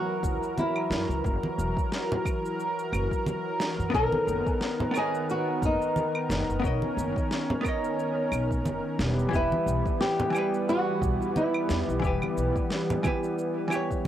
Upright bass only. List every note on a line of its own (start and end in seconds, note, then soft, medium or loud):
0.23 0.35 C#2 medium
0.90 1.02 F#2 medium
1.09 1.19 C#2 medium
1.24 1.36 F#1 medium
1.58 1.70 E1 medium
2.93 3.05 F#1 medium
3.79 3.88 F#2 medium
3.93 4.06 B1 medium
4.27 4.39 F#1 medium
5.62 5.74 F#1 medium
6.29 6.42 F#1 medium
6.49 6.58 F#1 medium
6.64 6.76 B1 medium
6.97 7.09 F#1 medium
8.32 8.65 B1 medium
8.65 8.78 F#1 medium
8.99 9.22 E1 loud
9.33 9.45 E1 medium
9.66 9.79 B1 medium
11.01 11.14 B1 medium
11.70 11.81 E2 loud
11.88 11.98 B1 medium
12.03 12.15 E1 medium
12.37 12.49 B1 medium